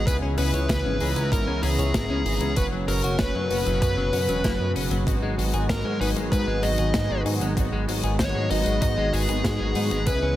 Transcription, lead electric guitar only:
0.07 0.15 B4 loud
0.38 0.68 B4 loud
0.69 1.32 B4 loud
1.32 1.63 A#4 medium
1.63 2.56 G#4 loud
2.57 2.65 B4 loud
2.88 3.17 A#4 loud
3.19 3.81 B4 medium
3.82 4.72 B4 medium
5.70 6.00 A#4 medium
6.01 6.09 B4 medium
6.32 6.64 B4 medium
6.63 7.22 D#5 loud
8.19 8.50 C#5 loud
8.51 8.81 D#5 loud
8.82 9.14 D#5 loud
9.13 10.06 G#4 loud
10.07 10.36 B4 loud

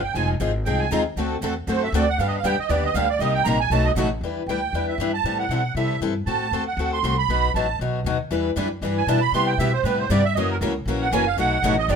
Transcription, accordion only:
0.03 0.14 G5 medium
0.14 0.29 G#5 medium
0.65 0.80 G5 medium
0.79 0.90 G#5 medium
0.91 1.00 A#5 medium
1.69 1.83 C5 medium
1.83 1.93 E5 medium
1.96 2.09 D5 medium
2.09 2.19 F#5 loud
2.19 2.27 F5 medium
2.28 2.36 D#5 medium
2.37 2.45 F5 medium
2.45 2.59 G5 loud
2.60 2.70 D#5 medium
2.69 2.83 D5 medium
2.84 2.95 D#5 medium
2.94 3.09 F5 loud
3.10 3.20 D5 medium
3.20 3.34 D#5 medium
3.34 3.45 G5 medium
3.44 3.59 A#5 loud
3.60 3.71 G#5 medium
3.72 3.86 A5 medium
3.85 3.92 D#5 medium
4.48 4.86 G5 medium
4.88 5.12 E5 medium
5.14 5.38 A5 loud
5.39 5.73 F#5 medium
5.76 6.00 E5 medium
6.26 6.64 A5 medium
6.68 6.91 F#5 medium
6.93 7.17 C6 medium
7.18 7.52 B5 loud
7.55 7.79 A5 medium
8.98 9.08 G#5 medium
9.08 9.22 A5 medium
9.21 9.33 B5 loud
9.33 9.48 C6 loud
9.47 9.58 G5 medium
9.59 9.73 E5 medium
9.73 9.84 C5 medium
9.84 9.99 B4 medium
9.99 10.10 C5 medium
10.10 10.24 D5 medium
10.25 10.36 E5 loud
10.35 10.50 D#5 medium
10.51 10.57 A#4 medium
11.01 11.12 F#5 medium
11.13 11.27 G#5 loud
11.27 11.38 F5 loud
11.39 11.76 F#5 loud
11.78 11.89 D#5 medium
11.89 11.96 D5 medium

